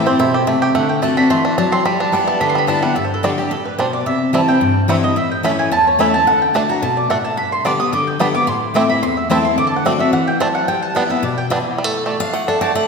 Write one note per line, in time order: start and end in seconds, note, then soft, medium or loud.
0.00 0.17 A2 medium
0.00 0.17 E4 medium
0.00 0.31 G4 medium
0.06 0.45 C4 medium
0.06 0.20 C4 medium
0.06 0.19 E4 medium
0.06 0.18 C5 loud
0.19 0.46 B2 loud
0.19 0.59 E4 medium
0.19 0.34 C5 medium
0.34 0.61 G4 medium
0.34 0.42 A4 medium
0.47 0.73 C3 medium
0.47 0.74 A3 medium
0.62 0.75 G4 medium
0.62 0.74 G5 loud
0.75 1.01 D3 medium
0.75 1.01 A3 medium
0.75 0.89 F#5 medium
0.89 1.02 G5 loud
1.02 1.16 D3 medium
1.02 1.29 A3 medium
1.02 1.17 A3 medium
1.02 1.17 C4 loud
1.02 1.15 F#4 loud
1.02 1.17 A5 loud
1.17 1.30 C4 medium
1.17 1.44 D4 medium
1.17 1.29 F#4 medium
1.17 1.30 B5 loud
1.30 1.56 E3 loud
1.30 1.70 A3 medium
1.30 1.44 C6 loud
1.45 1.57 D4 medium
1.45 1.57 E5 medium
1.58 1.84 F#3 loud
1.58 2.00 D4 medium
1.58 1.72 A5 medium
1.72 1.85 C4 medium
1.72 1.85 C6 loud
1.85 2.11 G3 medium
1.85 2.12 G3 medium
1.85 1.99 B5 loud
2.00 2.38 D4 medium
2.00 2.12 A5 loud
2.12 2.39 G3 medium
2.12 2.52 G3 medium
2.12 2.39 B3 medium
2.12 2.40 E4 loud
2.12 2.27 F#5 medium
2.27 2.66 B3 medium
2.27 2.40 A5 loud
2.40 2.93 D3 loud
2.40 2.67 D4 medium
2.40 2.49 B5 loud
2.50 2.58 C6 loud
2.55 2.81 G3 medium
2.55 2.67 B5 loud
2.67 2.82 G3 medium
2.67 2.82 B3 loud
2.67 2.96 D4 medium
2.67 2.81 E4 medium
2.67 2.82 A5 loud
2.82 2.96 G3 medium
2.82 2.96 B3 soft
2.82 2.95 E4 medium
2.82 2.95 F#5 loud
2.95 3.48 G2 medium
2.95 3.04 E5 medium
3.05 3.13 C5 medium
3.14 3.23 A4 medium
3.23 3.37 D3 medium
3.23 3.38 G3 medium
3.23 3.30 G3 medium
3.23 3.38 D4 loud
3.23 3.30 D4 medium
3.23 3.37 F#4 medium
3.23 3.36 G4 medium
3.38 3.51 D4 medium
3.38 3.50 G4 medium
3.51 3.77 A2 medium
3.51 3.65 A4 medium
3.65 3.78 B4 medium
3.78 4.05 B2 medium
3.78 3.85 G3 medium
3.78 3.86 D4 medium
3.78 3.93 C5 medium
3.93 4.06 D5 loud
4.06 4.59 C3 medium
4.06 4.32 E5 loud
4.33 4.47 E3 medium
4.33 4.48 G3 medium
4.33 4.40 G3 medium
4.33 4.48 C4 medium
4.33 4.41 C4 medium
4.33 4.46 E4 medium
4.33 4.41 E4 medium
4.33 4.48 A5 loud
4.48 4.61 C4 medium
4.48 4.61 E4 medium
4.48 4.74 G5 loud
4.61 5.14 G2 medium
4.88 5.03 E3 medium
4.88 5.03 G3 medium
4.88 4.96 G3 medium
4.88 5.03 C4 medium
4.88 4.96 C4 medium
4.88 5.01 E4 loud
4.88 4.96 E4 medium
4.88 5.03 F#5 loud
5.03 5.17 C4 soft
5.03 5.16 E4 medium
5.03 5.16 D#5 loud
5.16 5.69 A2 medium
5.16 5.31 E5 loud
5.31 5.44 G5 loud
5.43 5.70 E3 medium
5.43 5.70 A3 medium
5.43 5.51 A3 medium
5.43 5.71 C#4 loud
5.43 5.51 C#4 medium
5.43 5.71 E4 medium
5.43 5.51 E4 medium
5.43 5.58 B5 loud
5.59 5.72 G#5 loud
5.71 6.24 E2 medium
5.71 5.86 A5 loud
5.87 5.99 C#5 medium
5.99 6.13 E3 medium
5.99 6.13 A3 medium
5.99 6.06 A3 medium
5.99 6.14 C#4 loud
5.99 6.06 C#4 medium
5.99 6.13 E4 loud
5.99 6.07 E4 medium
5.99 6.14 E5 medium
6.14 6.27 C#4 soft
6.14 6.26 E4 medium
6.14 6.27 A5 loud
6.27 6.53 D3 medium
6.27 6.41 F#5 medium
6.42 6.54 G5 medium
6.54 6.68 D3 medium
6.54 6.69 A3 medium
6.54 6.61 A3 medium
6.54 6.62 D4 medium
6.54 6.69 D4 medium
6.54 6.68 F#4 medium
6.54 6.69 A5 medium
6.69 6.83 D4 soft
6.69 6.82 F#4 medium
6.69 6.82 A#5 loud
6.82 7.09 B2 loud
6.82 6.96 A5 loud
6.97 7.09 D5 medium
7.10 7.36 A2 medium
7.10 7.17 A3 medium
7.10 7.17 D4 medium
7.10 7.24 F#5 medium
7.25 7.37 A5 loud
7.37 7.90 G2 medium
7.37 7.52 B5 loud
7.52 7.65 C6 loud
7.65 7.79 D3 medium
7.65 7.72 G3 medium
7.65 7.79 G3 medium
7.65 7.72 B3 medium
7.65 7.80 B3 medium
7.65 7.72 D4 medium
7.65 7.78 G4 loud
7.65 7.79 D6 loud
7.80 7.93 B3 medium
7.80 7.92 G4 medium
7.80 7.92 D#6 loud
7.93 8.18 D3 loud
7.93 8.07 D6 loud
8.07 8.20 G5 medium
8.19 8.34 D3 loud
8.19 8.34 G3 medium
8.19 8.27 G3 medium
8.19 8.34 B3 medium
8.19 8.27 B3 medium
8.19 8.27 D4 medium
8.19 8.33 G4 loud
8.19 8.34 B5 loud
8.34 8.48 B3 soft
8.34 8.47 G4 medium
8.34 8.47 D6 loud
8.47 9.00 A2 medium
8.47 8.56 C6 loud
8.74 8.89 E3 medium
8.74 8.89 A3 loud
8.74 8.82 A3 medium
8.74 8.89 C4 loud
8.74 8.82 C4 medium
8.74 8.88 E4 medium
8.74 8.82 E4 medium
8.74 8.89 D6 loud
8.89 9.03 C4 medium
8.89 9.02 E4 medium
8.89 9.02 B5 loud
9.03 9.55 E2 loud
9.03 9.17 C6 loud
9.17 9.30 E5 medium
9.30 9.44 E3 medium
9.30 9.44 A3 loud
9.30 9.37 A3 medium
9.30 9.45 C4 loud
9.30 9.37 C4 medium
9.30 9.43 E4 loud
9.30 9.37 E4 medium
9.30 9.44 A5 loud
9.45 9.58 C4 soft
9.45 9.57 E4 medium
9.45 9.57 C6 loud
9.58 9.84 D3 medium
9.58 9.67 D6 loud
9.67 9.76 A5 loud
9.76 9.85 F#5 medium
9.85 9.99 D3 medium
9.85 10.00 A3 medium
9.85 9.92 A3 medium
9.85 10.00 C4 medium
9.85 9.92 C4 medium
9.85 9.92 D4 medium
9.85 9.98 F#4 loud
9.85 10.00 D5 medium
9.99 10.13 C4 soft
9.99 10.12 F#4 medium
9.99 10.13 E5 loud
10.13 10.39 E3 loud
10.13 10.27 F#5 medium
10.28 10.40 G5 loud
10.40 10.67 F#3 loud
10.40 10.47 A3 medium
10.40 10.47 C4 medium
10.40 10.47 D4 medium
10.40 10.54 A5 loud
10.55 10.68 F#5 loud
10.68 10.94 G3 medium
10.68 10.82 G5 loud
10.82 10.95 A5 loud
10.95 11.09 G3 medium
10.95 11.02 G3 medium
10.95 11.10 B3 medium
10.95 11.03 B3 medium
10.95 11.03 D4 medium
10.95 11.08 E4 medium
10.95 11.10 F#5 medium
11.09 11.23 B3 medium
11.09 11.22 E4 medium
11.09 11.23 E5 loud
11.23 11.49 B2 medium
11.23 11.37 D5 loud
11.38 11.46 G5 loud
11.50 11.77 E3 loud
11.50 11.58 G3 medium
11.50 11.58 B3 medium
11.50 11.58 D4 medium
11.78 11.84 G3 medium
11.84 12.05 A3 medium
12.06 12.15 A3 medium
12.06 12.33 A3 medium
12.06 12.15 F#4 medium
12.06 12.16 D5 medium
12.06 12.16 A5 loud
12.20 12.47 D4 medium
12.20 12.33 F5 loud
12.33 12.73 A3 medium
12.33 12.48 F#5 medium
12.48 12.60 D4 medium
12.48 12.61 A4 medium
12.61 12.71 A3 medium
12.61 12.88 D4 medium
12.61 12.71 F#4 medium
12.61 12.75 D5 medium
12.61 12.71 D5 medium
12.61 12.71 A5 loud
12.75 12.88 A3 medium
12.75 12.88 F#5 medium